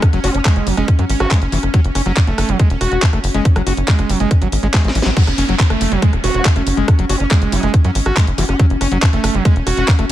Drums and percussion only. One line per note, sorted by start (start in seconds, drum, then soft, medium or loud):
0.02 kick loud
0.02 cross-stick medium
0.02 closed hi-hat medium
0.13 closed hi-hat soft
0.24 open hi-hat loud
0.34 closed hi-hat soft
0.45 kick loud
0.45 cross-stick soft
0.45 clap loud
0.45 closed hi-hat medium
0.56 closed hi-hat soft
0.67 open hi-hat medium
0.77 cross-stick soft
0.77 closed hi-hat soft
0.88 kick loud
0.88 closed hi-hat medium
0.99 closed hi-hat soft
1.09 open hi-hat medium
1.20 cross-stick medium
1.20 closed hi-hat soft
1.31 kick loud
1.31 clap loud
1.31 closed hi-hat medium
1.42 closed hi-hat soft
1.52 open hi-hat medium
1.63 cross-stick soft
1.63 closed hi-hat soft
1.74 kick loud
1.74 closed hi-hat medium
1.84 closed hi-hat soft
1.95 cross-stick soft
1.95 open hi-hat loud
2.06 closed hi-hat soft
2.17 kick loud
2.17 clap loud
2.17 closed hi-hat medium
2.27 closed hi-hat soft
2.38 cross-stick medium
2.38 open hi-hat medium
2.49 closed hi-hat soft
2.59 kick loud
2.59 closed hi-hat medium
2.70 closed hi-hat soft
2.81 cross-stick soft
2.81 open hi-hat loud
2.92 closed hi-hat soft
3.02 kick loud
3.02 clap loud
3.02 closed hi-hat medium
3.13 cross-stick soft
3.13 closed hi-hat soft
3.24 open hi-hat medium
3.34 closed hi-hat soft
3.45 kick loud
3.45 closed hi-hat medium
3.56 cross-stick medium
3.56 closed hi-hat soft
3.67 open hi-hat loud
3.77 closed hi-hat soft
3.88 kick loud
3.88 clap loud
3.88 closed hi-hat medium
3.99 cross-stick soft
3.99 closed hi-hat soft
4.09 open hi-hat medium
4.20 closed hi-hat soft
4.31 kick loud
4.31 cross-stick soft
4.31 closed hi-hat medium
4.42 closed hi-hat soft
4.52 open hi-hat loud
4.63 closed hi-hat soft
4.74 kick loud
4.74 snare medium
4.74 clap loud
4.74 closed hi-hat medium
4.84 snare medium
4.84 closed hi-hat soft
4.95 open hi-hat medium
5.02 snare loud
5.02 closed hi-hat soft
5.17 kick loud
5.17 closed hi-hat medium
5.17 crash loud
5.27 cross-stick soft
5.27 closed hi-hat soft
5.38 open hi-hat loud
5.49 closed hi-hat soft
5.59 kick loud
5.59 clap loud
5.59 closed hi-hat medium
5.70 cross-stick medium
5.70 closed hi-hat soft
5.81 open hi-hat loud
5.92 closed hi-hat soft
6.02 kick loud
6.02 closed hi-hat medium
6.13 cross-stick soft
6.13 closed hi-hat soft
6.24 open hi-hat loud
6.34 closed hi-hat soft
6.45 kick loud
6.45 cross-stick soft
6.45 clap loud
6.45 closed hi-hat medium
6.56 closed hi-hat soft
6.67 open hi-hat loud
6.77 closed hi-hat soft
6.88 kick loud
6.88 cross-stick medium
6.88 closed hi-hat medium
6.99 closed hi-hat soft
7.09 open hi-hat loud
7.20 closed hi-hat soft
7.31 kick loud
7.31 cross-stick soft
7.31 clap loud
7.31 closed hi-hat medium
7.42 closed hi-hat soft
7.52 open hi-hat loud
7.63 cross-stick soft
7.63 closed hi-hat soft
7.74 kick loud
7.74 closed hi-hat medium
7.84 closed hi-hat soft
7.95 open hi-hat loud
8.06 cross-stick medium
8.06 closed hi-hat soft
8.17 kick loud
8.17 clap loud
8.17 closed hi-hat medium
8.27 closed hi-hat soft
8.38 open hi-hat loud
8.49 cross-stick soft
8.49 closed hi-hat soft
8.59 kick loud
8.59 closed hi-hat medium
8.70 closed hi-hat soft
8.81 cross-stick soft
8.81 open hi-hat loud
8.92 closed hi-hat soft
9.02 kick loud
9.02 clap loud
9.02 closed hi-hat medium
9.13 closed hi-hat soft
9.24 cross-stick medium
9.24 open hi-hat loud
9.35 closed hi-hat soft
9.45 kick loud
9.45 closed hi-hat medium
9.56 closed hi-hat soft
9.67 cross-stick soft
9.67 open hi-hat loud
9.77 closed hi-hat soft
9.88 kick loud
9.88 clap loud
9.88 closed hi-hat medium
9.99 cross-stick soft
9.99 closed hi-hat soft